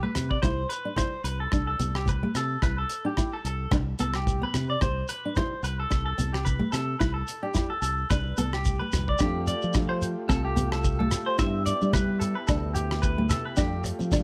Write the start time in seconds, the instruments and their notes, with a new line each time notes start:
0.03 steel-string acoustic guitar A3, clean electric guitar B4
0.15 fingered electric bass C3, cross-stick, closed hi-hat, muted conga, high conga, shekere
0.30 clean electric guitar D5, kick
0.42 fingered electric bass C2, steel-string acoustic guitar E4, clean electric guitar C5, kick, cross-stick, shekere
0.69 clean electric guitar B4, closed hi-hat, muted conga, shekere
0.85 steel-string acoustic guitar D4
0.96 steel-string acoustic guitar E4, clean electric guitar C5, kick, cross-stick, high conga, shekere
1.24 fingered electric bass C2, clean electric guitar B4, closed hi-hat, shekere
1.40 clean electric guitar A4
1.51 fingered electric bass C2, steel-string acoustic guitar D4, kick, cross-stick, muted conga, shekere
1.67 clean electric guitar A4
1.79 fingered electric bass C2, steel-string acoustic guitar B3, closed hi-hat, high conga, shekere
1.95 clean electric guitar G4, cross-stick
2.06 clean electric guitar B4, kick, high conga, shekere
2.23 steel-string acoustic guitar A3
2.34 fingered electric bass C3, clean electric guitar A4, cross-stick, closed hi-hat, muted conga, shekere
2.62 fingered electric bass C2, steel-string acoustic guitar E4, clean electric guitar B4, kick, cross-stick, muted conga, shekere
2.78 clean electric guitar A4
2.90 closed hi-hat, muted conga, shekere
3.05 steel-string acoustic guitar D4, clean electric guitar G4
3.17 steel-string acoustic guitar E4, kick, cross-stick, shekere
3.33 clean electric guitar A4
3.45 fingered electric bass C2, clean electric guitar A4, closed hi-hat, shekere
3.71 fingered electric bass C2, steel-string acoustic guitar D4, muted clean electric guitar stroke, kick, cross-stick, muted conga, high conga, shekere
3.99 fingered electric bass C2, steel-string acoustic guitar B3, clean electric guitar A4, closed hi-hat, shekere
4.14 clean electric guitar G4, cross-stick
4.27 kick, high conga, shekere
4.42 steel-string acoustic guitar B3, clean electric guitar B4
4.54 fingered electric bass C3, cross-stick, closed hi-hat, muted conga, high conga, shekere
4.70 clean electric guitar D5
4.81 fingered electric bass C2, clean electric guitar C5, muted steel-string acoustic guitar stroke, kick, cross-stick, shekere
5.08 clean electric guitar B4, closed hi-hat, muted conga, shekere
5.25 steel-string acoustic guitar D4
5.36 steel-string acoustic guitar E4, clean electric guitar C5, kick, cross-stick, high conga, shekere
5.63 fingered electric bass C2, clean electric guitar B4, closed hi-hat, shekere
5.80 clean electric guitar A4
5.90 fingered electric bass C2, muted steel-string acoustic guitar stroke, kick, cross-stick, muted conga, shekere
6.06 clean electric guitar A4
6.18 fingered electric bass C2, steel-string acoustic guitar B3, closed hi-hat, high conga, shekere
6.33 clean electric guitar G4, cross-stick
6.45 clean electric guitar B4, kick, high conga, shekere
6.59 steel-string acoustic guitar A3
6.72 fingered electric bass C3, clean electric guitar A4, cross-stick, closed hi-hat, muted conga, shekere
6.99 fingered electric bass C2, steel-string acoustic guitar E4, clean electric guitar B4, kick, cross-stick, shekere
7.14 clean electric guitar A4
7.28 closed hi-hat, muted conga, shekere
7.43 steel-string acoustic guitar D4, clean electric guitar G4
7.54 steel-string acoustic guitar E4, kick, cross-stick, low conga, shekere
7.70 clean electric guitar A4
7.82 fingered electric bass C2, clean electric guitar A4, closed hi-hat, shekere
8.10 fingered electric bass C2, steel-string acoustic guitar D4, clean electric guitar B4, kick, cross-stick, muted conga, high conga, shekere
8.37 fingered electric bass C2, steel-string acoustic guitar B3, clean electric guitar A4, closed hi-hat, shekere
8.53 clean electric guitar G4, cross-stick
8.65 kick, high conga, shekere
8.79 steel-string acoustic guitar A3, clean electric guitar B4
8.92 fingered electric bass C2, cross-stick, closed hi-hat, muted conga, high conga, low conga, shekere
9.08 clean electric guitar D5, kick
9.19 fingered electric bass F2, transistor combo organ A3 F4 G4, steel-string acoustic guitar D4, clean electric guitar G4, kick, cross-stick, shekere
9.47 clean electric guitar D5, closed hi-hat, shekere
9.62 fingered electric bass F3, shekere
9.74 steel-string acoustic guitar D4, kick, cross-stick, high conga, shekere
9.89 clean electric guitar C5
10.02 closed hi-hat, shekere
10.29 fingered electric bass C2, steel-string acoustic guitar C4, clean electric guitar A4, kick, cross-stick, shekere
10.45 clean electric guitar G4
10.56 steel-string acoustic guitar B3, closed hi-hat, muted conga, high conga, shekere
10.72 clean electric guitar A4, cross-stick
10.84 kick, high conga, shekere
10.99 steel-string acoustic guitar A3, clean electric guitar A4
11.11 cross-stick, closed hi-hat, muted conga, shekere
11.26 clean electric guitar C5
11.38 fingered electric bass G2, transistor combo organ B3 E4, steel-string acoustic guitar E4, clean electric guitar E5, kick, cross-stick, muted conga, shekere
11.66 clean electric guitar D5, closed hi-hat, shekere
11.81 fingered electric bass G3, steel-string acoustic guitar D4, shekere
11.93 steel-string acoustic guitar E4, clean electric guitar B4, kick, cross-stick, high conga, shekere
12.20 clean electric guitar A4, closed hi-hat, shekere
12.35 clean electric guitar B4
12.47 fingered electric bass D2, steel-string acoustic guitar D4, clean electric guitar A4, kick, cross-stick, muted conga, high conga, shekere
12.74 clean electric guitar G4, closed hi-hat, muted conga, shekere
12.91 cross-stick
13.02 clean electric guitar B4, kick, shekere
13.18 steel-string acoustic guitar A3
13.29 clean electric guitar A4, cross-stick, closed hi-hat, muted conga, high conga, shekere
13.45 clean electric guitar B4
13.57 fingered electric bass F2, transistor combo organ A3 F4, steel-string acoustic guitar D4, clean electric guitar G4, kick, cross-stick, muted conga, shekere
13.84 muted clean electric guitar stroke, closed hi-hat, shekere
13.99 fingered electric bass F3, steel-string acoustic guitar C4, shekere
14.12 steel-string acoustic guitar D4, kick, cross-stick, high conga, shekere